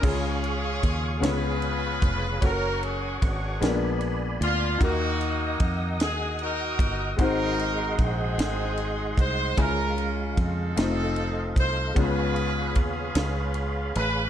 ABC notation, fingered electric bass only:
X:1
M:6/8
L:1/8
Q:3/8=50
K:Db
V:1 name="Fingered electric bass" clef=bass
D,,2 E,, D,,2 F,,, | G,,,2 A,,, B,,,2 =D,, | E,,2 F,, E,,2 =G,,, | A,,,2 B,,, A,,,2 C,, |
D,,2 F,, F,,,2 C,, | D,,2 E,, D,,2 =A,,, |]